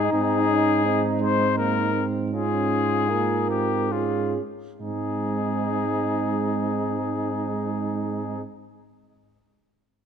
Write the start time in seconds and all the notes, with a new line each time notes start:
Already playing: D#4 G#4
0.12 G#2 C4 G#4
0.49 C#4
0.85 C4 D#4
1.21 G#3 C5
1.57 A#3 A#4
1.95 C4
2.32 C#4 F4 G#4
3.09 A#3 F4 A#4
3.50 C4 G4
3.92 C#4 F4 G#4
4.80 G#2 G#3 C4 D#4 G#4